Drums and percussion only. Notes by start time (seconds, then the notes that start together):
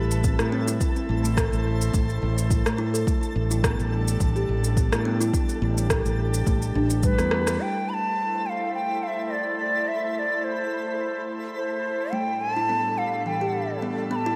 0.11 shaker
0.24 kick, shaker
0.39 cross-stick, shaker
0.68 shaker
0.81 kick, shaker
0.96 shaker
1.25 shaker
1.37 kick, cross-stick, shaker
1.53 shaker
1.81 shaker
1.94 kick, shaker
2.10 shaker
2.38 shaker
2.51 kick, shaker
2.66 cross-stick, shaker
2.95 shaker
3.07 kick, shaker
3.23 shaker
3.51 shaker
3.64 kick, cross-stick, shaker
3.80 shaker
4.08 shaker
4.20 kick, shaker
4.36 shaker
4.64 shaker
4.77 kick, shaker
4.92 cross-stick, shaker
5.21 shaker
5.33 kick, shaker
5.49 shaker
5.78 shaker
5.90 kick, cross-stick, shaker
6.06 shaker
6.34 shaker
6.47 kick, shaker
6.62 shaker
6.90 shaker
7.03 kick, shaker
7.18 cross-stick, shaker
7.31 cross-stick
7.47 cross-stick, shaker
7.60 shaker
7.76 shaker
8.04 shaker
8.60 shaker
8.73 shaker
9.17 shaker
9.30 shaker
9.74 shaker
9.86 shaker
10.30 shaker
10.43 shaker
10.59 shaker
10.87 shaker
11.00 shaker
11.15 shaker
11.43 shaker
11.56 shaker
11.72 shaker
12.00 shaker
12.13 shaker
12.28 shaker
12.57 shaker
12.70 shaker
12.85 shaker
13.13 shaker
13.26 shaker
13.42 shaker
13.70 shaker
13.83 shaker
13.98 shaker
14.27 shaker